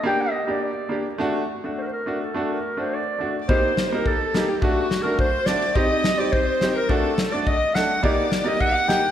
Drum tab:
SD |--------|--------|--------|--o---o-|
BD |--------|--------|--------|o---o---|

SD |--o---oo|--o---o-|--o---o-|--o---o-|
BD |o---o---|o---o---|o---o---|o---o---|